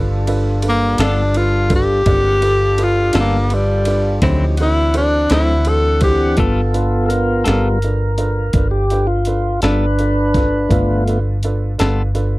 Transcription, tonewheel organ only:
0.00 2.03 G3 medium
0.00 2.02 D4 medium
0.00 2.03 F4 medium
0.00 2.02 A4 medium
2.07 2.43 G#3 medium
2.07 2.43 C4 medium
2.07 2.43 A#4 medium
2.07 2.43 F#5 medium
2.43 4.21 D4 medium
2.43 4.21 F4 medium
2.43 4.21 G4 medium
2.43 4.22 A4 medium
4.22 4.58 F3 medium
4.22 4.58 C#4 medium
4.22 4.58 D#4 medium
4.22 4.58 G4 medium
4.58 6.37 E3 medium
4.58 6.37 C4 medium
4.58 6.36 D4 medium
4.58 6.36 F#5 medium
6.37 7.46 B3 soft
6.37 7.45 F4 soft
6.37 7.05 A4 soft
7.06 7.10 A4 medium
7.06 8.68 A#4 medium
7.46 7.79 G3 soft
7.46 7.79 B3 soft
7.46 7.79 F4 soft
8.71 9.07 G4 medium
9.07 9.60 F4 medium
9.63 11.03 D4 medium
9.63 11.04 B4 medium
10.69 11.18 A3 soft
10.69 11.19 B3 soft
10.69 11.20 F4 soft

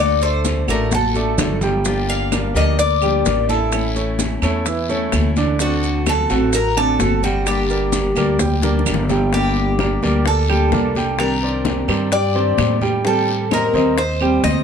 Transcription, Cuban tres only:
0.00 0.22 D5 loud
0.23 0.66 C5 medium
0.70 0.94 A#4 medium
0.95 1.60 A4 medium
2.10 2.56 F5 medium
2.57 2.79 D#5 medium
2.79 3.49 D5 loud
3.49 4.39 A4 medium
5.62 6.04 F#4 medium
6.09 6.54 A4 medium
6.55 6.77 A#4 loud
6.77 7.23 A4 loud
7.24 7.47 F#4 medium
7.48 8.83 G4 medium
9.34 10.23 G4 medium
10.27 11.16 A4 medium
11.20 12.12 A#4 medium
12.12 12.78 D5 loud
13.07 13.53 A4 medium
13.53 14.00 A#4 medium
13.98 14.44 C5 loud
14.44 14.63 D#5 loud

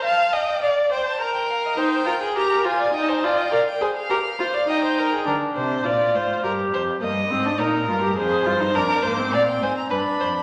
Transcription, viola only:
1.77 2.04 D#4 medium
2.06 2.14 F4 medium
2.35 2.66 G4 medium
2.65 2.94 F4 medium
2.94 3.25 D#4 medium
3.24 3.52 F4 medium
3.52 3.60 A#4 medium
3.81 3.89 G#4 medium
4.10 4.18 G4 medium
4.39 4.47 F4 medium
4.68 5.25 D#4 medium
5.26 5.86 D4 medium
5.85 6.44 F4 medium
6.43 7.01 G4 medium
7.01 7.09 A#3 medium
7.31 7.47 C4 medium
7.46 7.59 D4 medium
7.60 7.88 D#4 medium
7.89 8.01 F4 medium
8.02 8.16 G4 medium
8.17 8.48 G#4 medium
8.46 8.62 F4 medium
8.60 8.77 D#4 medium
8.75 9.04 D4 medium
9.04 9.20 A#3 medium
9.18 9.90 C4 medium
9.91 10.43 D4 medium

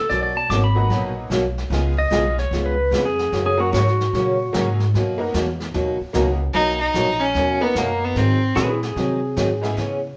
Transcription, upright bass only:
0.10 0.49 B1 medium
0.50 0.89 G#1 medium
0.90 1.29 A#1 medium
1.30 1.70 B1 medium
1.70 2.10 C#2 medium
2.11 2.50 B1 medium
2.51 2.91 C#2 medium
2.91 3.31 F2 medium
3.32 3.72 F#2 medium
3.73 4.12 G#2 medium
4.13 4.52 A#2 medium
4.54 4.93 G#2 medium
4.94 5.33 F#2 medium
5.34 5.73 E2 loud
5.74 5.99 D#2 medium
6.00 muted upright bass stroke soft
6.14 6.53 C#2 loud
6.54 6.94 B1 medium
6.94 7.34 A#1 medium
7.35 7.74 D#2 medium
7.75 8.15 F#2 medium
8.16 8.55 G#2 medium
8.56 8.96 A#2 medium
8.96 9.36 C3 medium
9.37 9.76 G#2 medium
9.77 10.16 C#3 medium

